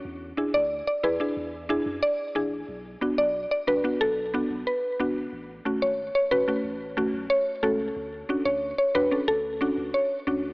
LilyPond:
<<
  \new Staff \with { instrumentName = "Synth pluck" } { \time 4/4 \key b \dorian \tempo 4 = 91 r8. d''16 r16 d''16 b'16 r4 r16 d''16 r16 gis'16 r16 | r8. d''16 r16 d''16 b'16 r16 a'8. r16 b'8. r16 | r8. cis''16 r16 cis''16 b'16 r4 r16 cis''16 r16 a'16 r16 | r8. cis''16 r16 cis''16 b'16 r16 a'8. r16 cis''8. r16 | }
  \new Staff \with { instrumentName = "Synth pluck" } { \time 4/4 \key b \dorian r8 <d' e' gis'>16 r8. <e' gis'>16 <d' e' gis'>16 r8 <d' e' gis'>16 r8. <d' e' gis'>16 r16 | r8 <b d' fis'>16 r8. <d' fis'>16 <b d' fis'>16 r8 <b d' fis'>16 r8. <b d' fis'>16 r16 | r8 <a cis' fis'>16 r8. <cis' fis'>16 <a cis' fis'>16 r8 <a cis' fis'>16 r8. <a cis' fis'>16 r16 | r8 <cis' d' fis'>16 r8. <d' fis'>16 <cis' d' a'>16 r8 <cis' d' fis'>16 r8. <cis' d' fis'>16 r16 | }
  \new Staff \with { instrumentName = "Sub bass" } { \clef bass \time 4/4 \key b \dorian e,8 r16 d,8 r16 e,16 r16 e,8. fis,16 r8 a,,8 | b,,8 r16 b,,8 r16 d,16 r16 b,,8. b,,16 r8 gis,,8 | a,,8 r16 gis,,8 r16 a,,16 r16 a,,8. b,,16 r8 cis,8 | d,8 r16 d,8 r16 e,16 r16 d,8. d,16 r8 d,8 | }
>>